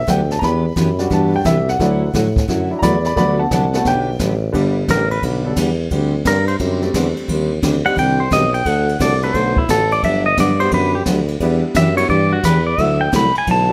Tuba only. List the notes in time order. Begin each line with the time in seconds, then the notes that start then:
0.07 D2
0.42 E2
0.76 F#2
1.11 G2
1.45 C2
1.80 D2
2.14 A2
2.48 F#2
2.83 E2
3.17 D2
3.51 C2
3.85 B1
4.20 A1
4.54 G1
4.88 A1
5.22 B1
5.56 E2
5.91 D2
6.25 G2
6.60 F#2
6.94 E2
7.17 E2
7.29 D#2
7.63 D2
7.86 D2
7.97 C2
8.32 B1
8.65 D2
9.00 C2
9.34 B1
9.69 A1
10.03 G1
10.38 G2
10.72 F#2
11.06 D2
11.40 E2
11.75 F#2
12.09 G2
12.44 E2
12.78 D2
13.13 C2
13.36 C2
13.47 B1